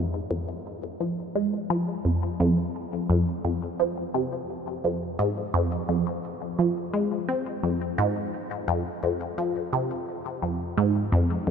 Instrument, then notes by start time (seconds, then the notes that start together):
synth arpeggio sound
Already playing: F2
0.31 F2
1.00 F3
1.35 G#3
1.70 F3
2.05 F2
2.40 F2
3.10 F2
3.45 F2
3.80 F3
4.14 C3
4.84 F2
5.19 G#2
5.54 F2
5.89 F2
6.59 F3
6.94 G#3
7.29 C4
7.63 F2
7.98 G#2
8.68 F2
9.03 F2
9.38 F3
9.73 C3
10.42 F2
10.77 G#2
11.12 F2
11.47 F2